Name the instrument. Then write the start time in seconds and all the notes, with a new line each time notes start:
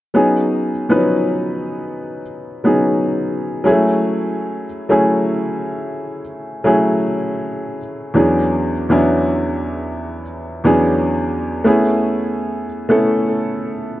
grand piano
0.14 F#3 B3 C#4 D#4 G#4
0.89 F3 B3 C#4 D#4 B4
0.95 F#3
2.64 F#3 B3 C#4 D#4 G#4
3.64 F#3 G#3 C#4 E4 G#4
3.71 A3
4.89 F#3 A3 C#4 E4 G#4
6.64 F#3 A3 C#4 E4 G#4
8.14 E2 F#3 B3 C#4 D4 G#4
8.89 E2 F#3 B3 C#4 D4 E4
10.64 E2 F#3 B3 C#4 D4 G#4
11.64 A3 B3 C#4 E4 G#4
12.89 A3 B3 C#4 E4 A4